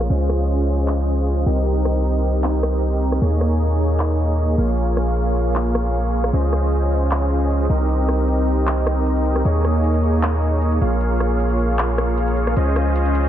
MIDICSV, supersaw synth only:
0, 0, Header, 1, 2, 480
1, 0, Start_track
1, 0, Tempo, 389610
1, 121, Time_signature, 4, 2, 24, 8
1, 16371, End_track
2, 0, Start_track
2, 0, Title_t, "Supersaw synth"
2, 0, Program_c, 0, 81
2, 119, Note_on_c, 0, 65, 72
2, 120, Note_on_c, 0, 61, 75
2, 120, Note_on_c, 0, 68, 72
2, 120, Note_on_c, 0, 72, 67
2, 120, Note_on_c, 0, 75, 83
2, 1773, Note_off_c, 0, 61, 0
2, 1773, Note_off_c, 0, 65, 0
2, 1773, Note_off_c, 0, 68, 0
2, 1773, Note_off_c, 0, 72, 0
2, 1773, Note_off_c, 0, 75, 0
2, 1800, Note_on_c, 0, 60, 73
2, 1800, Note_on_c, 0, 63, 67
2, 1800, Note_on_c, 0, 67, 67
2, 1800, Note_on_c, 0, 75, 80
2, 1801, Note_on_c, 0, 70, 70
2, 3933, Note_off_c, 0, 60, 0
2, 3933, Note_off_c, 0, 63, 0
2, 3933, Note_off_c, 0, 67, 0
2, 3933, Note_off_c, 0, 70, 0
2, 3933, Note_off_c, 0, 75, 0
2, 3961, Note_on_c, 0, 58, 73
2, 3961, Note_on_c, 0, 63, 71
2, 3961, Note_on_c, 0, 68, 70
2, 3961, Note_on_c, 0, 73, 70
2, 3961, Note_on_c, 0, 75, 81
2, 5613, Note_off_c, 0, 58, 0
2, 5613, Note_off_c, 0, 63, 0
2, 5613, Note_off_c, 0, 68, 0
2, 5613, Note_off_c, 0, 73, 0
2, 5613, Note_off_c, 0, 75, 0
2, 5641, Note_on_c, 0, 58, 74
2, 5641, Note_on_c, 0, 65, 67
2, 5641, Note_on_c, 0, 68, 67
2, 5641, Note_on_c, 0, 73, 67
2, 5641, Note_on_c, 0, 77, 80
2, 7773, Note_off_c, 0, 58, 0
2, 7773, Note_off_c, 0, 65, 0
2, 7773, Note_off_c, 0, 68, 0
2, 7773, Note_off_c, 0, 73, 0
2, 7774, Note_off_c, 0, 77, 0
2, 7802, Note_on_c, 0, 61, 75
2, 7802, Note_on_c, 0, 65, 69
2, 7802, Note_on_c, 0, 68, 70
2, 7802, Note_on_c, 0, 72, 70
2, 7802, Note_on_c, 0, 75, 87
2, 9454, Note_off_c, 0, 61, 0
2, 9454, Note_off_c, 0, 65, 0
2, 9454, Note_off_c, 0, 68, 0
2, 9454, Note_off_c, 0, 72, 0
2, 9454, Note_off_c, 0, 75, 0
2, 9481, Note_on_c, 0, 63, 66
2, 9481, Note_on_c, 0, 67, 65
2, 9481, Note_on_c, 0, 75, 80
2, 9482, Note_on_c, 0, 60, 75
2, 9482, Note_on_c, 0, 70, 68
2, 11614, Note_off_c, 0, 60, 0
2, 11614, Note_off_c, 0, 63, 0
2, 11614, Note_off_c, 0, 67, 0
2, 11614, Note_off_c, 0, 70, 0
2, 11614, Note_off_c, 0, 75, 0
2, 11642, Note_on_c, 0, 58, 76
2, 11642, Note_on_c, 0, 63, 71
2, 11642, Note_on_c, 0, 68, 69
2, 11642, Note_on_c, 0, 73, 69
2, 11642, Note_on_c, 0, 75, 84
2, 13294, Note_off_c, 0, 58, 0
2, 13294, Note_off_c, 0, 63, 0
2, 13294, Note_off_c, 0, 68, 0
2, 13294, Note_off_c, 0, 73, 0
2, 13294, Note_off_c, 0, 75, 0
2, 13322, Note_on_c, 0, 58, 75
2, 13322, Note_on_c, 0, 65, 66
2, 13322, Note_on_c, 0, 68, 68
2, 13322, Note_on_c, 0, 73, 70
2, 13322, Note_on_c, 0, 77, 85
2, 15454, Note_off_c, 0, 58, 0
2, 15454, Note_off_c, 0, 65, 0
2, 15454, Note_off_c, 0, 68, 0
2, 15454, Note_off_c, 0, 73, 0
2, 15454, Note_off_c, 0, 77, 0
2, 15480, Note_on_c, 0, 61, 74
2, 15480, Note_on_c, 0, 65, 70
2, 15480, Note_on_c, 0, 68, 69
2, 15480, Note_on_c, 0, 72, 71
2, 15480, Note_on_c, 0, 75, 84
2, 16371, Note_off_c, 0, 61, 0
2, 16371, Note_off_c, 0, 65, 0
2, 16371, Note_off_c, 0, 68, 0
2, 16371, Note_off_c, 0, 72, 0
2, 16371, Note_off_c, 0, 75, 0
2, 16371, End_track
0, 0, End_of_file